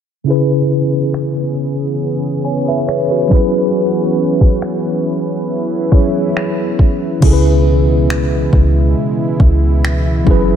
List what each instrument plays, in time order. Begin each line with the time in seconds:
0.24 tine electric piano C#3 C#4 E4, analog synth pad E3 B3 C#4 G#4 B4
0.29 tine electric piano G#4 B4
1.14 finger snap
2.45 tine electric piano C#5 G#5
2.68 tine electric piano B4 E5
2.88 tine electric piano G#4 C#5, finger snap
3.11 tine electric piano F#4 B4
3.28 tine electric piano F#3 C#4 E4, analog synth pad F#4, kick
3.33 tine electric piano G#4 B4
4.41 kick
4.62 finger snap
5.05 analog synth pad E4
5.91 tine electric piano F#3 C#4 E4 G#4 C#5, kick
6.37 finger snap
6.79 kick
7.20 808-style bass C#2, analog synth pad B2 E3 G#3 B3 E4, tine electric piano C#3 C#4 E4, kick, crash
7.25 tine electric piano G#4 A4
7.33 tine electric piano B4
8.10 finger snap
8.53 808-style bass C#2, kick
9.40 808-style bass C#2, kick
9.85 finger snap
10.25 808-style bass F#1, tine electric piano F#3 C#4 E4, analog synth pad F#3, kick
10.29 tine electric piano G#4 B4